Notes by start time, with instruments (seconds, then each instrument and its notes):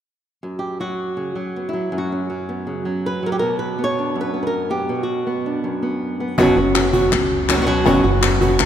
0.43 nylon-string guitar F#2
0.59 nylon-string guitar G4
0.80 nylon-string guitar F#3 F#4
1.17 nylon-string guitar C#3
1.35 nylon-string guitar F#3
1.56 nylon-string guitar B3
1.69 nylon-string guitar E4
1.73 nylon-string guitar F#3
1.92 nylon-string guitar F#2
1.98 nylon-string guitar F#4
2.12 nylon-string guitar C#4
2.30 nylon-string guitar F#3
2.49 nylon-string guitar B3
2.67 nylon-string guitar C#3
2.85 nylon-string guitar F#3
3.06 nylon-string guitar B4
3.23 nylon-string guitar F#3 A#4
3.32 nylon-string guitar G4
3.39 nylon-string guitar B2 A#4
3.59 nylon-string guitar B4
3.78 nylon-string guitar B3
3.84 nylon-string guitar C#5
3.99 nylon-string guitar D4
4.15 nylon-string guitar F#2
4.21 nylon-string guitar B4
4.34 nylon-string guitar B3
4.43 nylon-string guitar B4
4.47 nylon-string guitar A#4
4.70 nylon-string guitar B3 G4
4.89 nylon-string guitar B2
5.03 nylon-string guitar F#4
5.27 nylon-string guitar B3
5.46 nylon-string guitar D4
5.64 nylon-string guitar F#2
5.82 nylon-string guitar B3
6.20 nylon-string guitar B3
6.38 upright bass F#1, nylon-string guitar B2 F#3 B3 C#4 F#4, cajon bass
6.56 upright bass F#1, nylon-string guitar B3 C#4 F#4, cajon slap
6.75 nylon-string guitar B3 C#4 F#4, cajon slap, clap
6.93 nylon-string guitar B3 C#4 F#4, cajon bass
7.12 upright bass C#2, muted nylon-string guitar stroke, clap
7.31 cajon slap
7.49 nylon-string guitar F#3 B3 C#4 F#4, cajon slap, clap
7.57 nylon-string guitar F#3 B3 C#4 F#4
7.62 nylon-string guitar F#3 B3 C#4 F#4
7.66 nylon-string guitar B2 F#3 B3 C#4 F#4
7.85 upright bass F#1, nylon-string guitar B2 F#3 B3 C#4 F#4, cajon bass, clap
8.03 upright bass F#1, nylon-string guitar B3 C#4 F#4
8.21 nylon-string guitar B3 C#4 F#4, cajon slap, clap
8.41 nylon-string guitar B3 C#4 F#4, cajon bass
8.59 upright bass C#2, muted nylon-string guitar stroke, clap